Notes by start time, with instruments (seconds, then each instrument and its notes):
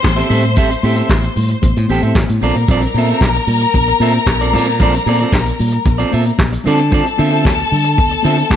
Already playing: string section C5 C6
0.03 fingered electric bass A1, muted clean electric guitar stroke, kick, snare, clap, muted conga, high conga
0.16 clean electric guitar C4 G4 A4 E5, closed hi-hat
0.29 fingered electric bass A2, clean electric guitar C4 G4 A4 E5, open hi-hat, muted conga, high conga, low conga
0.44 muted clean electric guitar stroke, closed hi-hat
0.56 fingered electric bass A1, clean electric guitar C4 G4 A4 E5, kick, closed hi-hat, muted conga, low conga
0.70 muted clean electric guitar stroke, closed hi-hat
0.83 fingered electric bass A2, clean electric guitar C4 G4 A4 E5, open hi-hat, muted conga, high conga
0.96 clean electric guitar C4 G4 A4 E5, closed hi-hat
1.08 fingered electric bass A1, muted clean electric guitar stroke, kick, snare, clap, high conga
1.23 muted clean electric guitar stroke, closed hi-hat
1.36 fingered electric bass A2, open hi-hat, low conga
1.48 muted clean electric guitar stroke, closed hi-hat
1.62 fingered electric bass A1, muted clean electric guitar stroke, kick, closed hi-hat, high conga
1.76 fingered electric bass A2, muted clean electric guitar stroke, closed hi-hat
1.88 fingered electric bass A1, clean electric guitar C4 G4 A4 G5, open hi-hat, muted conga, high conga
2.02 fingered electric bass A2, clean electric guitar C4 G4 A4 E5, closed hi-hat
2.14 fingered electric bass A1, muted clean electric guitar stroke, kick, snare, clap, muted conga, high conga
2.29 fingered electric bass A2, muted clean electric guitar stroke, closed hi-hat
2.41 fingered electric bass A#1, clean electric guitar C4 F4 A4 D5, string section A#4 A#5, open hi-hat, muted conga, high conga, low conga
2.55 fingered electric bass A#2, muted clean electric guitar stroke, closed hi-hat
2.68 fingered electric bass A#1, clean electric guitar C4 F4 A4 D5, kick, closed hi-hat, low conga
2.82 muted clean electric guitar stroke, closed hi-hat
2.94 fingered electric bass A#2, clean electric guitar C4 F4 A4, open hi-hat, muted conga, high conga
2.99 clean electric guitar E5
3.08 clean electric guitar A4 E5, closed hi-hat
3.12 clean electric guitar C4 F4
3.20 fingered electric bass A#1, kick, snare, clap, high conga
3.35 muted clean electric guitar stroke, closed hi-hat
3.47 fingered electric bass A#2, open hi-hat, muted conga, low conga
3.60 muted clean electric guitar stroke, closed hi-hat
3.74 fingered electric bass A#1, muted clean electric guitar stroke, kick, closed hi-hat, muted conga, high conga
3.88 muted clean electric guitar stroke, closed hi-hat
4.00 fingered electric bass A#2, clean electric guitar C4 F4 A4 E5, open hi-hat, muted conga, high conga
4.14 muted clean electric guitar stroke, closed hi-hat
4.26 fingered electric bass A#1, muted clean electric guitar stroke, kick, snare, clap, muted conga, high conga
4.40 clean electric guitar C4 F4 A4 D5, closed hi-hat
4.53 fingered electric bass A#2, clean electric guitar C4 F4 A4 D5, open hi-hat, muted conga, high conga, low conga
4.67 muted clean electric guitar stroke, closed hi-hat
4.79 fingered electric bass A#1, clean electric guitar C4 F4 A4 D5, kick, closed hi-hat, muted conga, low conga
4.94 muted clean electric guitar stroke, closed hi-hat
5.06 fingered electric bass A#2, clean electric guitar C4 F4 A4 D5, open hi-hat, muted conga, high conga
5.19 clean electric guitar C4 F4 A4 D5, snare, closed hi-hat
5.32 fingered electric bass A#1, kick, snare, clap, muted conga, high conga
5.46 muted clean electric guitar stroke, closed hi-hat
5.59 fingered electric bass A#2, open hi-hat, muted conga, low conga
5.71 muted clean electric guitar stroke, closed hi-hat
5.85 fingered electric bass A#1, muted clean electric guitar stroke, kick, closed hi-hat, high conga
5.98 clean electric guitar C4 F4 A4 D5, closed hi-hat
6.11 fingered electric bass A#2, clean electric guitar C4 F4 A4 E5, open hi-hat, high conga
6.26 muted clean electric guitar stroke, closed hi-hat
6.38 fingered electric bass A#1, muted clean electric guitar stroke, kick, snare, clap, high conga
6.53 muted clean electric guitar stroke, closed hi-hat
6.64 fingered electric bass D3, clean electric guitar C4 F4 A4 D5, string section A4 A5, open hi-hat, high conga, low conga
6.80 muted clean electric guitar stroke, closed hi-hat
6.90 clean electric guitar C4 F4 A4 D5, kick, closed hi-hat, low conga
7.06 muted clean electric guitar stroke, closed hi-hat
7.18 fingered electric bass D3, clean electric guitar C4 F4 A4 E5, open hi-hat, muted conga, high conga
7.31 clean electric guitar C4 F4 A4 E5, closed hi-hat
7.43 fingered electric bass D2, muted clean electric guitar stroke, kick, snare, muted conga, high conga
7.47 clap
7.59 muted clean electric guitar stroke, closed hi-hat
7.71 fingered electric bass D3, open hi-hat, muted conga, low conga
7.85 muted clean electric guitar stroke, closed hi-hat
7.97 fingered electric bass D2, muted clean electric guitar stroke, kick, closed hi-hat, high conga
8.11 muted clean electric guitar stroke, closed hi-hat
8.23 fingered electric bass D3, clean electric guitar C4 F4 A4 E5, open hi-hat, muted conga, high conga
8.38 muted clean electric guitar stroke, closed hi-hat
8.50 fingered electric bass D2, muted clean electric guitar stroke, kick, snare, clap, muted conga, high conga